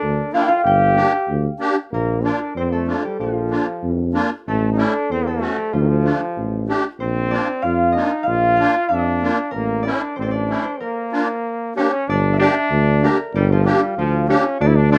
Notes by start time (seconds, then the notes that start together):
Already playing: D4 A#4 D5
0.02 D2
0.33 A#3 D4 E4 F4 F5
0.41 G5
0.47 F4 F5
0.64 G1 G4 G5
0.95 A#3 D4 G4
1.28 D2
1.60 A#3 D4 G4
1.91 A#1 A#3 A#4
2.23 A#3 D4 F4
2.27 D5
2.55 F2 C4 C5
2.72 A3 A4
2.87 A#3 D4 F4
3.04 G3 G4
3.19 A#1 F3 F4
3.50 A#3 D4 F4
3.83 F2
4.13 A#3 D4 F4
4.47 A1 A3 A4
4.72 D#4
4.77 A3 C#4 D4 E4 D5
5.10 E2 C4 C5
5.27 A3 A4
5.40 A3 C#4 F#4
5.58 G4
5.73 D2 F3 F4
5.81 D#3
5.88 F3
6.04 A3 D4 F4
6.37 A1
6.68 A3 D4 G4
7.00 A#1 C4 C5
7.31 A#3 D4 F4 D5
7.62 F2 F4 F5
7.92 A#3 D4 F4 D#5
7.97 D#4
8.23 A#1 F5
8.28 F4
8.56 A#3 D4 F4 F5
8.89 F2 D4 D5
9.22 A#3 D4 F4
9.51 A1 A#3 A#4
9.83 A3 C#4 D4 E4 D5
10.16 A1 C4 C5
10.22 C5 D5
10.26 C4
10.31 D4 D5
10.49 A3 C#4 E4
10.62 C5
10.80 A#3 A#4
11.12 A#3 D4 F4
11.75 A#3 C#4 D4 G4 C#5
11.83 A#3
11.90 C#4
12.08 G1 D4 D5
12.33 E5
12.38 A#3 D4 G4 D5
12.70 D2
13.02 A#3 D4 G4 A#4
13.34 G1 G3 G4
13.51 F3 F4
13.64 G3 A#3 D4 G4
13.69 G4
13.97 D2 F3 F4
14.28 A#3 C#4 D4 G4 C#5
14.60 D2 D4 D5
14.67 E4
14.76 D4
14.90 A3 D4 F4 D5